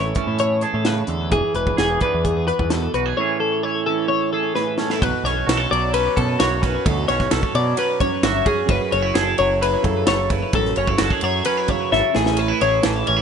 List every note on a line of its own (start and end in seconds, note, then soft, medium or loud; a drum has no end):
0.00 0.12 A1 medium
0.00 1.29 A2 medium
0.00 0.15 E3 soft
0.00 2.02 E4 medium
0.00 0.16 C#5 medium
0.15 1.30 E3 medium
0.15 1.29 C#4 soft
0.15 0.39 A4 medium
0.15 kick medium
0.15 closed hi-hat medium
0.27 0.64 A2 medium
0.39 0.63 C#5 medium
0.39 closed hi-hat medium
0.61 1.77 G#4 medium
0.61 0.86 A4 medium
0.61 closed hi-hat medium
0.74 1.01 A2 medium
0.85 1.07 C#3 medium
0.85 1.09 B4 medium
0.85 snare loud
0.85 closed hi-hat medium
1.07 1.33 E2 medium
1.07 1.32 D3 medium
1.07 1.32 A4 medium
1.07 closed hi-hat medium
1.30 1.41 E1 medium
1.30 3.17 E3 medium
1.30 1.55 G#4 medium
1.30 kick medium
1.30 closed hi-hat medium
1.54 1.73 E1 medium
1.54 1.79 B4 medium
1.54 closed hi-hat soft
1.67 kick medium
1.77 1.97 E1 medium
1.77 2.47 G#4 medium
1.77 2.02 G#4 medium
1.77 snare medium
1.77 closed hi-hat medium
2.01 3.15 B3 medium
2.01 3.15 D4 medium
2.01 2.25 B4 medium
2.01 kick medium
2.01 closed hi-hat medium
2.14 2.50 E2 medium
2.25 2.47 G#4 medium
2.25 kick medium
2.25 closed hi-hat medium
2.48 2.70 B4 medium
2.48 2.94 B4 medium
2.48 closed hi-hat soft
2.59 2.87 E2 medium
2.59 kick medium
2.70 3.17 B2 medium
2.70 2.94 A4 medium
2.70 snare medium
2.70 closed hi-hat medium
2.94 3.12 B1 medium
2.94 3.06 F#4 medium
2.94 3.17 B4 medium
2.94 closed hi-hat medium
3.06 3.17 G#4 soft
3.17 4.54 A2 medium
3.17 3.86 E3 soft
3.17 3.87 C#4 soft
3.17 3.64 E4 soft
3.17 4.33 G#4 medium
3.17 3.40 C#5 medium
3.40 3.63 A4 medium
3.63 4.77 E4 medium
3.63 3.86 C#5 medium
3.86 5.68 E3 soft
3.86 4.77 C#4 soft
3.86 4.08 A4 medium
4.08 4.32 C#5 medium
4.33 5.00 G#4 soft
4.33 4.55 A4 medium
4.55 4.99 A2 medium
4.55 4.79 B4 medium
4.55 snare soft
4.78 4.91 C#4 soft
4.78 5.02 A4 medium
4.78 snare medium
4.90 5.02 E4 soft
4.90 snare medium
5.00 5.11 B1 medium
5.00 6.16 B2 medium
5.00 5.25 B4 medium
5.00 kick medium
5.00 ride medium
5.24 5.42 B1 medium
5.24 5.93 C#4 medium
5.24 5.47 C#5 medium
5.24 snare soft
5.24 ride medium
5.46 5.66 B1 medium
5.46 5.57 F#4 medium
5.46 5.71 A4 medium
5.46 snare loud
5.46 ride medium
5.57 6.39 A4 soft
5.69 6.07 B1 medium
5.69 7.56 F#3 medium
5.69 5.94 D5 medium
5.73 ride medium
5.93 6.61 C#4 medium
5.93 6.17 B4 medium
5.93 ride medium
6.16 6.86 F#2 medium
6.16 6.35 B2 loud
6.16 6.40 A4 medium
6.16 kick medium
6.16 ride medium
6.39 6.76 B1 medium
6.39 7.31 F#4 medium
6.39 6.62 C#5 medium
6.39 snare loud
6.39 ride medium
6.61 7.10 C#4 medium
6.61 6.85 B4 medium
6.61 kick medium
6.61 snare soft
6.61 ride medium
6.85 7.04 D2 loud
6.85 8.01 B2 medium
6.85 7.08 A4 medium
6.85 kick loud
6.85 ride medium
7.08 7.27 B1 medium
7.08 7.77 C#4 medium
7.08 7.32 C#5 medium
7.08 snare soft
7.08 ride medium
7.20 kick medium
7.20 snare soft
7.31 7.41 B1 medium
7.31 8.23 A4 medium
7.31 7.55 A4 medium
7.31 snare loud
7.31 ride loud
7.43 kick medium
7.55 7.73 B2 medium
7.55 9.05 F#3 medium
7.55 7.78 D5 medium
7.55 ride medium
7.77 8.45 C#4 medium
7.77 8.00 B4 medium
7.77 ride medium
8.00 8.65 F#2 medium
8.00 8.24 C#5 medium
8.00 kick medium
8.00 ride medium
8.23 8.42 G1 medium
8.23 9.14 F#4 medium
8.23 8.47 E5 medium
8.23 snare loud
8.23 ride medium
8.45 8.91 C#4 medium
8.45 8.70 G#4 medium
8.45 kick medium
8.45 ride medium
8.66 8.79 F#1 medium
8.66 10.52 F#2 medium
8.66 8.93 B4 medium
8.66 kick medium
8.66 ride medium
8.91 9.11 F#1 medium
8.91 9.02 C#4 medium
8.91 9.15 C#5 medium
8.91 ride medium
9.02 9.60 E4 soft
9.14 9.34 F#1 medium
9.14 10.06 G#4 medium
9.14 9.38 A4 medium
9.14 snare loud
9.14 ride medium
9.38 9.75 F#1 loud
9.38 10.51 F#3 medium
9.38 9.62 C#5 medium
9.38 ride medium
9.61 10.30 E4 medium
9.61 9.85 B4 medium
9.61 ride medium
9.82 10.03 F#2 loud
9.82 10.50 C#3 medium
9.82 10.07 A4 medium
9.82 kick medium
9.82 ride medium
10.06 10.43 F#1 medium
10.06 10.98 A4 medium
10.06 10.31 C#5 medium
10.06 snare loud
10.06 ride medium
10.30 10.57 E4 medium
10.30 10.54 B4 medium
10.30 kick medium
10.30 ride medium
10.53 10.72 A1 medium
10.53 12.13 F#2 medium
10.53 10.77 A4 medium
10.53 kick medium
10.53 ride medium
10.65 snare soft
10.76 10.95 F#1 medium
10.76 10.88 C#4 medium
10.76 11.00 C#5 medium
10.76 ride medium
10.87 11.45 E4 soft
10.87 kick medium
10.98 11.09 F#1 medium
10.98 11.11 F#4 medium
10.98 11.24 A4 medium
10.98 snare loud
10.98 ride medium
11.10 11.92 G#4 soft
11.10 kick medium
11.21 11.41 F#2 medium
11.21 12.12 F#3 medium
11.21 11.45 C#5 medium
11.21 ride medium
11.45 11.57 C#4 medium
11.45 11.69 B4 medium
11.45 ride medium
11.57 12.15 E4 soft
11.68 12.11 C#3 medium
11.68 11.92 C#5 medium
11.68 kick medium
11.68 ride medium
11.92 12.01 G#1 medium
11.92 12.60 A4 medium
11.92 12.15 E5 medium
11.92 snare medium
12.14 12.51 A1 medium
12.14 13.22 A2 medium
12.14 12.39 G#4 medium
12.14 snare medium
12.26 snare medium
12.36 12.48 C#4 medium
12.36 12.61 B4 medium
12.36 ride medium
12.48 13.05 E4 soft
12.61 12.79 A1 medium
12.61 13.22 G#4 medium
12.61 12.84 C#5 medium
12.61 ride medium
12.83 13.03 A1 medium
12.83 13.22 E3 medium
12.83 13.07 A4 medium
12.83 snare loud
12.83 ride medium
13.06 13.22 A1 medium
13.06 13.16 C#4 soft
13.06 13.22 C#5 medium
13.06 ride medium
13.16 13.22 E4 medium